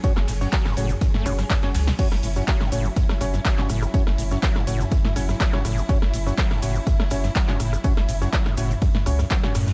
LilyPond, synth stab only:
\new Staff \with { instrumentName = "Synth stab" } { \time 4/4 \key fis \minor \tempo 4 = 123 <cis' fis' cis''>16 r8 <cis' fis' cis''>16 r8 <cis' fis' cis''>16 r8. <cis' fis' cis''>16 r8 <cis' fis' cis''>16 r8 | <cis' fis' cis''>16 r8 <cis' fis' cis''>16 r8 <cis' fis' cis''>16 r8. <cis' fis' cis''>16 r8 <cis' fis' cis''>16 r8 | <cis' fis' cis''>16 r8 <cis' fis' cis''>16 r8 <cis' fis' cis''>16 r8. <cis' fis' cis''>16 r8 <cis' fis' cis''>16 r8 | <cis' fis' cis''>16 r8 <cis' fis' cis''>16 r8 <cis' fis' cis''>16 r8. <cis' fis' cis''>16 r8 <cis' fis' cis''>16 r8 |
<cis' fis' cis''>16 r8 <cis' fis' cis''>16 r8 <cis' fis' cis''>16 r8. <cis' fis' cis''>16 r8 <cis' fis' cis''>16 r8 | }